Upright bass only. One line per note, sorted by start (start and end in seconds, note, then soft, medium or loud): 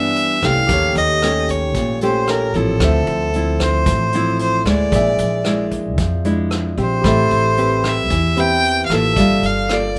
0.00 0.39 G2 medium
0.43 0.67 C2 medium
0.69 0.94 D#2 medium
0.95 1.75 D#2 medium
1.75 2.50 A#1 medium
2.54 2.79 A1 medium
2.80 3.05 D2 medium
3.07 3.88 D2 medium
3.86 4.62 A1 medium
4.65 4.90 D2 medium
4.92 5.17 A#1 medium
5.19 5.98 A#1 medium
5.98 6.74 F2 medium
6.78 7.02 A#1 medium
7.04 7.29 A1 loud
7.31 8.11 A1 medium
8.11 8.86 E2 medium
8.90 9.14 A1 medium
9.16 9.41 G1 medium
9.43 9.99 G1 medium